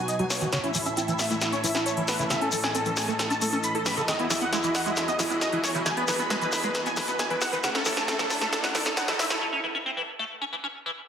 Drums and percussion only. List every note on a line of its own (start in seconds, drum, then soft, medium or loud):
0.08 closed hi-hat medium
0.08 shekere medium
0.19 closed hi-hat soft
0.30 snare medium
0.30 open hi-hat medium
0.30 shekere medium
0.41 closed hi-hat medium
0.41 shekere soft
0.52 snare medium
0.52 closed hi-hat medium
0.52 shekere medium
0.64 closed hi-hat soft
0.74 open hi-hat loud
0.74 shekere medium
0.85 closed hi-hat medium
0.85 shekere soft
0.97 closed hi-hat medium
0.97 shekere medium
1.08 closed hi-hat soft
1.08 shekere soft
1.19 snare medium
1.19 open hi-hat medium
1.19 shekere medium
1.30 closed hi-hat soft
1.30 shekere soft
1.41 snare medium
1.41 closed hi-hat medium
1.41 shekere medium
1.53 closed hi-hat soft
1.53 shekere soft
1.64 open hi-hat loud
1.64 shekere medium
1.75 snare medium
1.75 shekere soft
1.86 closed hi-hat medium
1.86 shekere soft
1.97 closed hi-hat soft
2.08 snare medium
2.08 open hi-hat medium
2.08 shekere medium
2.19 closed hi-hat medium
2.19 shekere soft
2.30 snare medium
2.30 closed hi-hat medium
2.30 shekere medium
2.41 closed hi-hat soft
2.52 open hi-hat loud
2.52 shekere medium
2.63 snare medium
2.63 shekere soft
2.75 closed hi-hat medium
2.75 shekere medium
2.85 closed hi-hat soft
2.85 shekere soft
2.97 snare medium
2.97 open hi-hat medium
2.97 shekere medium
3.08 closed hi-hat soft
3.08 shekere soft
3.19 snare medium
3.19 closed hi-hat medium
3.19 shekere medium
3.30 closed hi-hat soft
3.30 shekere soft
3.41 open hi-hat loud
3.41 shekere medium
3.52 closed hi-hat medium
3.52 shekere soft
3.63 closed hi-hat medium
3.63 shekere medium
3.75 closed hi-hat soft
3.86 snare medium
3.86 open hi-hat medium
3.86 shekere medium
3.97 closed hi-hat medium
3.97 shekere soft
4.08 snare medium
4.08 closed hi-hat medium
4.08 shekere soft
4.19 closed hi-hat soft
4.30 snare medium
4.30 open hi-hat loud
4.30 shekere loud
4.41 closed hi-hat medium
4.41 shekere soft
4.53 snare medium
4.53 closed hi-hat medium
4.53 shekere soft
4.63 closed hi-hat soft
4.63 shekere soft
4.75 snare medium
4.75 open hi-hat medium
4.75 shekere medium
4.86 closed hi-hat soft
4.86 shekere soft
4.96 snare medium
4.96 closed hi-hat medium
4.96 shekere medium
5.08 closed hi-hat soft
5.08 shekere soft
5.19 snare medium
5.19 open hi-hat loud
5.19 shekere medium
5.30 closed hi-hat medium
5.30 shekere soft
5.41 snare medium
5.41 closed hi-hat medium
5.41 shekere medium
5.53 closed hi-hat soft
5.64 snare medium
5.64 open hi-hat medium
5.64 shekere medium
5.75 closed hi-hat medium
5.75 shekere soft
5.86 snare medium
5.86 closed hi-hat medium
5.86 shekere soft
5.97 closed hi-hat soft
6.08 snare medium
6.08 open hi-hat loud
6.08 shekere medium
6.19 closed hi-hat medium
6.19 shekere soft
6.30 snare medium
6.30 closed hi-hat medium
6.30 shekere soft
6.41 closed hi-hat soft
6.41 shekere soft
6.52 snare medium
6.52 open hi-hat medium
6.52 shekere medium
6.63 closed hi-hat soft
6.63 shekere soft
6.74 snare medium
6.74 closed hi-hat medium
6.74 shekere medium
6.86 closed hi-hat soft
6.86 shekere soft
6.96 snare medium
6.96 open hi-hat loud
6.96 shekere loud
7.08 closed hi-hat medium
7.08 shekere soft
7.19 snare medium
7.19 closed hi-hat medium
7.19 shekere soft
7.30 closed hi-hat soft
7.41 snare medium
7.41 open hi-hat medium
7.41 shekere medium
7.53 closed hi-hat medium
7.53 shekere soft
7.63 snare medium
7.63 closed hi-hat medium
7.63 shekere medium
7.75 snare medium
7.75 closed hi-hat soft
7.85 snare medium
7.85 open hi-hat loud
7.85 shekere medium
7.97 snare medium
7.97 closed hi-hat medium
7.97 shekere soft
8.08 snare medium
8.08 closed hi-hat medium
8.08 shekere soft
8.19 snare medium
8.19 closed hi-hat soft
8.19 shekere soft
8.30 snare loud
8.30 open hi-hat medium
8.30 shekere medium
8.41 snare medium
8.41 closed hi-hat medium
8.41 shekere soft
8.53 snare medium
8.53 closed hi-hat medium
8.53 shekere soft
8.64 snare medium
8.64 closed hi-hat soft
8.64 shekere soft
8.75 snare loud
8.75 open hi-hat loud
8.75 shekere medium
8.85 snare medium
8.85 closed hi-hat medium
8.85 shekere soft
8.97 snare loud
8.97 closed hi-hat medium
8.97 shekere soft
9.08 snare medium
9.08 closed hi-hat soft
9.19 snare loud
9.19 open hi-hat medium
9.19 shekere medium
9.30 snare medium
9.30 closed hi-hat medium
9.30 shekere soft